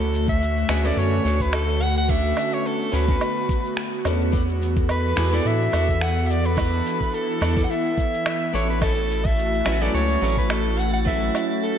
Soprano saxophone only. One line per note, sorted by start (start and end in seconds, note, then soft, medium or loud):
0.00 0.28 A4 medium
0.29 0.87 E5 loud
0.85 1.00 D5 medium
0.98 1.43 C#5 loud
1.41 1.56 B4 medium
1.54 1.84 A4 loud
1.82 1.97 F#5 loud
1.97 2.12 F#5 loud
2.10 2.55 E5 loud
2.54 2.68 C#5 medium
2.67 2.96 A4 medium
2.95 3.78 B4 medium
4.91 5.35 B4 loud
5.34 5.48 D5 medium
5.47 6.04 E5 loud
6.02 6.28 F#5 loud
6.27 6.47 D5 loud
6.27 6.32 E5 medium
6.46 7.16 B4 loud
7.15 7.63 A4 medium
7.64 7.72 F#5 medium
7.71 8.54 E5 loud
8.55 8.69 C#5 medium
8.70 8.82 B4 medium
8.82 9.28 A4 medium
9.26 9.83 E5 loud
9.81 9.94 D5 medium
9.94 10.35 C#5 loud
10.38 10.50 B4 medium
10.50 10.80 A4 medium
10.78 10.93 F#5 loud
10.94 10.99 F#5 medium
11.07 11.47 E5 loud
11.63 11.78 A4 medium